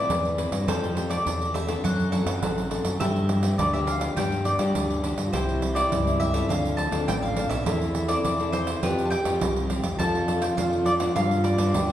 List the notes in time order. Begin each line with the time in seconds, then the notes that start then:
Already playing: C4 E4 B4 D5
0.09 E2 E3, pandeiro
0.25 pandeiro
0.38 C4 E4 B4, pandeiro
0.51 G2, pandeiro
0.67 F2 F3 C4 G4 A4 C5, pandeiro
0.84 pandeiro
0.96 C4 G4 A4, pandeiro
1.10 C4 G4 A4 D5, pandeiro
1.26 E2 C3, pandeiro
1.42 pandeiro
1.54 C4 G4 A4 E5, pandeiro
1.67 C4 D4 A4, pandeiro
1.84 F#2 F#3 F#5, pandeiro
2.00 pandeiro
2.12 C4 D4 A4 F#5, pandeiro
2.26 F#2, pandeiro
2.42 A1 F#3 C4 D4 A4, pandeiro
2.58 pandeiro
2.70 C4 D4 A4, pandeiro
2.84 F#2, pandeiro
3.00 G2 G3 B3 D4 G4 E5, pandeiro
3.16 pandeiro
3.29 pandeiro
3.43 B3 D4 G4, pandeiro
3.58 D2 D3 D5, pandeiro
3.73 B3 D4 G4 E5, pandeiro
3.87 F5, pandeiro
4.01 pandeiro
4.17 G2 G3 B3 D4 G4 G5, pandeiro
4.32 pandeiro
4.45 D5, pandeiro
4.59 G2 B3 D4 G4, pandeiro
4.75 D2 D3, pandeiro
4.90 pandeiro
5.04 B3 D4 G4, pandeiro
5.17 G2, pandeiro
5.27 F4
5.33 C2 C3 C4 E4 G4 C5, pandeiro
5.49 pandeiro
5.62 pandeiro
5.75 C4 E4 G4 D5, pandeiro
5.92 C#2 G2, pandeiro
6.07 C4 E4 G4, pandeiro
6.20 E5, pandeiro
6.33 C4 F4 A4, pandeiro
6.49 D2 D3 D4 F5, pandeiro
6.65 pandeiro
6.77 A5, pandeiro
6.91 D2 C4 F4 A4, pandeiro
7.08 A1 A2 G5, pandeiro
7.22 F5, pandeiro
7.36 C4 F4 A4, pandeiro
7.49 B1 E5, pandeiro
7.66 E2 E3 C4 E4 A4, pandeiro
7.82 pandeiro
7.95 pandeiro
8.08 C4 E4 A4 D5, pandeiro
8.24 E2 E3, pandeiro
8.40 C4 E4 A4, pandeiro
8.52 C5, pandeiro
8.67 pandeiro
8.83 F2 F3 C4 F4 G4 B4, pandeiro
8.98 pandeiro
9.05 A5
9.10 G5, pandeiro
9.25 F2 C4 F4 G4, pandeiro
9.41 C2 C3, pandeiro
9.56 pandeiro
9.70 C4 F4 G4, pandeiro
9.83 F2, pandeiro
9.99 F2 F3 C4 D4 F4 A4 A5, pandeiro
10.15 pandeiro
10.28 C4 D4 A4, pandeiro
10.42 G5, pandeiro
10.57 F2 F3 C4 D4 A4 F5, pandeiro
10.73 pandeiro
10.86 D5, pandeiro
11.00 F3 B3 D4, pandeiro
11.16 G2 F4 F5, pandeiro
11.31 pandeiro
11.44 D5, pandeiro
11.58 G2 F3 B3 D4, pandeiro
11.74 D2 D3 G4, pandeiro
11.89 F3